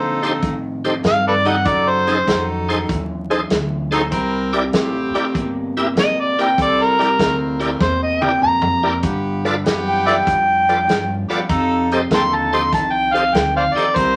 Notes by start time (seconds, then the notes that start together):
Already playing: F2 A#2 D3 D#4 F4 A4 C5
0.22 F2 D3 D#4 G4 A4 C5, closed hi-hat
0.42 F2 A2 D#3, kick, closed hi-hat
0.84 F2 D#3 D#4 G4 A4 C5, closed hi-hat
1.03 F2 G2 D#3 F5, snare, closed hi-hat
1.27 A4 B4 D5
1.44 F2 D#3 D#4 F4 G4 A4 D#5, closed hi-hat
1.48 F#5
1.64 F#2 C#3 D#4 F#4 A4, kick, closed hi-hat
1.68 D5
1.89 C5
2.07 F#2 C#3 D#4 G#4 A4 C5, snare, closed hi-hat
2.27 F2 F#2 D#3 D#4 F#4 A4, kick, snare, closed hi-hat
2.69 F#2 D#3 D#4 G#4 A4 C5, closed hi-hat
2.88 D#2 F#2 E3, kick, closed hi-hat
3.30 F#2 E3 D#4 G#4 A4 C5, closed hi-hat
3.50 D2 F#2 E3, snare, closed hi-hat
3.91 F#2 E3 D#4 F#4 G#4 A4 C5, closed hi-hat
4.11 C2 C3 G3 C4 E4 A#4, kick, closed hi-hat
4.53 C3 G3 E4 G4 A#4 D5, closed hi-hat
4.72 A1 C3 A3 C4 E4 G4, snare, closed hi-hat
5.14 C3 A3 E4 G4 A#4 D5, muted upright bass stroke, closed hi-hat
5.34 G1 C3 A#3, kick, closed hi-hat
5.77 C3 A#3 E4 G4 A#4 E5, closed hi-hat
5.95 A#1 C3 A#3, snare, closed hi-hat
6.00 D#5
6.20 D5
6.37 C3 A#3 C4 E4 G4 A#4 D5 G5, closed hi-hat
6.57 C2 C3 G3 C4 E4 A4, kick, closed hi-hat
6.62 D5
6.82 A#4
6.99 C3 G3 E4 G4 A#4 D5, snare, closed hi-hat
7.18 D2 C3 A3 C4 E4 A#4, kick, snare, closed hi-hat
7.60 C3 A3 E4 G4 A#4 D5, closed hi-hat
7.80 E2 C3 A#3 C5, kick, snare
8.03 D#5
8.21 C3 A#3 E4 G4 A#4 D5 G5, high tom
8.42 F2 C3 A#3 A#5, mid tom
8.62 mid tom
8.83 C3 A#3 C4 E4 G4 A#4 D5
9.03 G2 D3 B3 F4 G4, kick, closed hi-hat
9.45 G2 D3 F4 A4 B4 D5, snare, closed hi-hat
9.64 F#2 G2 E3 B3 F4 G4, snare, closed hi-hat
9.88 G5
10.06 G2 E3 F4 A4 B4 D5 E5 G5, closed hi-hat
10.27 F2 G2 F3, kick, closed hi-hat
10.68 G2 F3 F4 A4 B4 D5, closed hi-hat
10.88 G2 F3, snare, closed hi-hat
11.28 G2 F3 B3 F4 G4 A4 B4 D5, closed hi-hat
11.48 F2 C3 D#4 F4 A4, kick, closed hi-hat
11.91 F2 C3 G4 A4 C5 D#5, snare, closed hi-hat
12.10 D#2 F2 D3 D#4 F4 A4, kick, snare, closed hi-hat
12.14 G5 A5 C6
12.35 A5
12.53 F2 D3 G4 A4 C5 D#5 C6, closed hi-hat
12.72 C2 F2 D#3 A5, kick, closed hi-hat
12.93 G5
13.13 F2 D#3 G4 A4 C5 D#5 F5, closed hi-hat
13.32 D2 F2 D#3 G5, snare, closed hi-hat
13.56 C5 D5 F5
13.73 F2 D#3 D#4 F4 G4 A4 C5 D5 D#5, muted upright bass stroke, closed hi-hat
13.94 C2 C3 G3 C4 E4 A#4 C5, kick, closed hi-hat